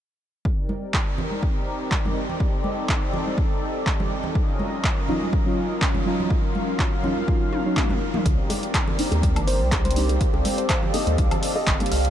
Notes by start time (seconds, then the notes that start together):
0.45 C4 D#4 G4 A#4 D5, kick
0.69 high conga
0.94 kick, clap
1.18 low conga
1.31 high conga
1.43 kick
1.92 kick, clap
2.05 high conga, low conga
2.29 low conga
2.40 A4, kick
2.64 high conga
2.89 kick, clap
3.13 low conga
3.27 high conga
3.38 kick
3.87 kick, clap
4.00 high conga, low conga
4.23 low conga
4.35 F#3 C#4 F4 A#4 D#5, kick
4.60 high conga
4.84 kick, clap
5.08 F#3 C#4 D#4 F4, low conga
5.21 high conga
5.33 kick
5.45 F#3 C#4 D#4 F4
5.82 kick, clap
5.95 high conga, low conga
6.06 F#3 C#4 D#4 F4
6.20 low conga
6.30 F5, kick
6.55 high conga
6.79 kick, clap
7.03 F#3 C#4 D#4 F4, low conga
7.18 high conga
7.28 F#3 C#4 D#4 F4, kick
7.53 high tom
7.65 F#3 C#4 D#4 F#4
7.77 kick, clap, mid tom
7.89 mid tom, high conga, low conga
8.14 mid tom, low conga
8.26 C2 C4 G4 A#4 D5, kick, closed hi-hat, high bongo
8.43 C5
8.50 open hi-hat, high bongo, high conga
8.63 closed hi-hat
8.74 kick, clap, closed hi-hat, high woodblock
8.81 F5
8.88 high bongo, low conga
8.98 A#3 C4 D4 D#4, open hi-hat
9.11 D#2, closed hi-hat, high bongo, high conga
9.23 kick, closed hi-hat
9.35 G1 A#3 C4 D4 D#4, closed hi-hat, low conga, high woodblock
9.47 C5, open hi-hat, high bongo
9.61 C2
9.72 kick, clap, closed hi-hat, high bongo
9.85 C5, closed hi-hat, high conga
9.91 closed hi-hat
9.96 A#3 C4 D4 D#4, open hi-hat
10.09 closed hi-hat, high bongo
10.21 A4, kick, closed hi-hat
10.34 C2, high bongo
10.45 open hi-hat, high conga
10.58 C5, closed hi-hat
10.69 C5, kick, clap, closed hi-hat, high bongo, high woodblock
10.83 low conga
10.94 A#3 C4 D4 D#4 D#5, open hi-hat, high bongo
11.07 D#2, closed hi-hat, high conga
11.18 C2 A#3 C4 D4 D#4, kick, closed hi-hat
11.31 closed hi-hat, high bongo, low conga, high woodblock
11.43 open hi-hat
11.56 D#5, high bongo
11.67 G1, kick, clap, closed hi-hat
11.80 A#3 C4 D4 D#4, closed hi-hat, high conga
11.86 closed hi-hat
11.91 C2 F5, open hi-hat, high bongo
12.05 closed hi-hat